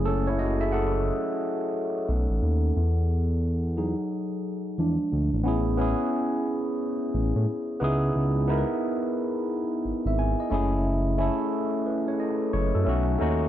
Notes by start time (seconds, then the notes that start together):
Already playing: F#1 F#3 A3 C#4 E4 G#4
0.05 C#4 A4
0.27 E4 C#5
0.39 F#4 D#5
0.61 G#4 E5
0.72 A4 F#5
2.08 B1 A3 C#4 D#4
2.30 A1
2.42 D#2
2.77 E2
3.77 F#3 D#4 G#4
4.78 E2 F3 G#3 D4
5.12 D2
5.33 A1
5.44 A1 B3 C#4 E4
5.48 G#4
5.77 B3 C#4 E4
5.81 G#4
7.14 A1
7.36 A2
7.80 C#2 B3 D#4 E4
7.84 G#4
8.16 C#2
8.47 B3 D#4 E4
8.52 A#4
8.58 B4
9.85 G#1
10.05 G#1 E5
10.19 G#5
10.40 D#5
10.50 F#1 A3 C#4 E4 G#4
11.18 A3 C#4 E4 A4
11.86 B4
12.08 C#5
12.20 D#5
12.53 F#1 C#5
12.75 F#2 A4
12.85 B1 A3 C#4 D#4 F#4
13.18 D#2 A3 C#4 D#4 F#4